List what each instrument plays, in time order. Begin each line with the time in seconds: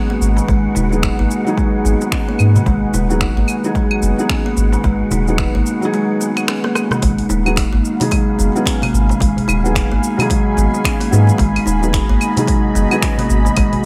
Already playing: analog synth pad D#4 F#4 G#4 B4 G#5, synth texture F#5
0.10 kalimba A#3
0.21 sub bass G#1, darbuka ka, shaker
0.37 kalimba D#3, darbuka tek, shaker
0.48 sub bass G#1, kalimba G#3, kick, darbuka ka, shaker
0.75 sub bass D#1, kalimba D#4, darbuka tek, darbuka dum, shaker
0.91 felt piano F#3 B3 D#4 G#4, shaker
1.03 kalimba D#4, finger snap, kick, shaker
1.19 sub bass G#1, kalimba A#3
1.31 shaker
1.45 kalimba D#3, felt piano F#3 D#4, shaker
1.49 felt piano G#4
1.58 kalimba G#3, kick, shaker
1.85 sub bass G#1, kalimba B3, darbuka ka, darbuka tek, shaker
2.01 darbuka tek, shaker
2.12 kalimba C#4, finger snap, kick, darbuka ka, shaker
2.29 kalimba A#3
2.39 sub bass G#2, darbuka ka, claves, shaker
2.56 kalimba D#3, darbuka dum, shaker
2.66 sub bass G#1, kalimba G#3, kick, darbuka ka, shaker
2.93 sub bass D#1, kalimba D#4, darbuka tek, darbuka dum, shaker
3.09 felt piano F#3 B3 D#4 G#4, darbuka ka, shaker
3.21 kalimba D#4, finger snap, kick, shaker
3.37 sub bass G#1, kalimba A#3
3.48 claves, shaker
3.64 kalimba D#3, felt piano F#3 D#4 G#4, shaker
3.75 kalimba G#3, kick, shaker
3.91 darbuka ka, claves
4.02 sub bass F#1, kalimba B3, shaker
4.18 felt piano F#3 B3 D#4 G#4, shaker
4.30 kalimba C#4, finger snap, kick, shaker
4.46 kalimba A#3
4.57 sub bass G#1, darbuka ka, shaker
4.73 kalimba D#3, darbuka tek, shaker
4.84 sub bass G#1, kalimba G#3, kick, darbuka ka, shaker
5.11 sub bass D#1, kalimba D#4, darbuka tek, darbuka dum, shaker
5.28 felt piano F#3 B3 D#4 G#4, darbuka ka, shaker
5.38 kalimba D#4, finger snap, kick, shaker
5.55 sub bass G#1, kalimba A#3
5.66 shaker
5.81 kalimba D#3, felt piano F#3 D#4 G#4, shaker
5.94 kalimba G#3, shaker
6.21 kalimba B3, darbuka ka, darbuka tek, shaker
6.37 finger snap, darbuka tek, claves, shaker
6.48 kalimba C#4, finger snap, cross-stick, darbuka ka, shaker
6.64 kalimba A#3, cross-stick
6.75 cross-stick, darbuka ka, darbuka tek, claves, shaker
6.91 kalimba D#3, cross-stick, darbuka dum, shaker
7.02 sub bass G#1, kalimba G#3, analog synth pad D#4, synth texture F5, kick, open hi-hat, darbuka ka, shaker
7.18 open hi-hat
7.24 analog synth pad F#4
7.29 sub bass D#1, kalimba D#4, darbuka tek, shaker
7.45 felt piano F#3 B3 D#4 G#4, darbuka ka, claves, shaker
7.56 kalimba D#4, finger snap, kick, open hi-hat, shaker
7.73 sub bass G#1, kalimba A#3
7.83 analog synth pad B5, shaker
7.99 kalimba D#3, felt piano F#3 D#4 G#4, analog synth pad G#4, open hi-hat, darbuka dum, shaker
8.11 kalimba G#3, kick, open hi-hat, claves, shaker
8.29 darbuka ka
8.39 sub bass F#1, kalimba B3, shaker
8.45 analog synth pad G#5
8.55 felt piano F#3 B3 D#4 G#4, shaker
8.66 kalimba C#4, finger snap, kick, open hi-hat, shaker
8.82 kalimba A#3, open hi-hat, darbuka dum, claves
8.94 sub bass G#1, darbuka ka, shaker
9.09 kalimba D#3, darbuka tek, shaker
9.20 sub bass G#1, kalimba G#3, kick, open hi-hat, darbuka ka, shaker
9.37 open hi-hat, darbuka dum
9.48 sub bass D#1, kalimba D#4, darbuka tek, claves, shaker
9.64 felt piano F#3 B3 D#4 G#4, shaker
9.75 kalimba D#4, finger snap, kick, open hi-hat, shaker
9.92 sub bass G#1, kalimba A#3
10.04 shaker
10.17 kalimba D#3, felt piano F#3 D#4, open hi-hat, darbuka dum, claves, shaker
10.21 felt piano G#4
10.30 kalimba G#3, kick, open hi-hat, shaker
10.57 sub bass G#1, kalimba B3, darbuka ka, darbuka tek, shaker
10.74 darbuka tek, shaker
10.84 kalimba C#4, finger snap, kick, open hi-hat, darbuka ka, claves, shaker
11.01 kalimba A#3, open hi-hat
11.11 sub bass G#2, felt piano F#3 B3 D#4 G#4, darbuka ka, shaker
11.27 kalimba D#3, shaker
11.38 sub bass G#1, kalimba G#3, synth texture D#5, kick, open hi-hat, darbuka ka, shaker
11.56 open hi-hat, claves
11.66 sub bass D#1, kalimba D#4, darbuka tek, shaker
11.81 felt piano F#3 B3 D#4 G#4, darbuka ka, shaker
11.93 kalimba D#4, finger snap, kick, open hi-hat, shaker
12.09 sub bass G#1, kalimba A#3
12.21 claves, shaker
12.36 kalimba D#3, felt piano F#3 D#4 G#4, open hi-hat, darbuka dum, shaker
12.47 kalimba G#3, kick, open hi-hat, shaker
12.65 darbuka ka
12.75 sub bass F#1, kalimba B3, shaker
12.91 felt piano F#3 B3 D#4 G#4, claves, shaker
13.03 kalimba C#4, finger snap, kick, open hi-hat, shaker
13.18 kalimba A#3, open hi-hat, darbuka dum
13.30 sub bass G#1, darbuka ka, shaker
13.45 kalimba D#3, darbuka tek, shaker
13.56 sub bass G#1, kalimba G#3, kick, open hi-hat, darbuka ka, claves, shaker
13.72 open hi-hat, darbuka dum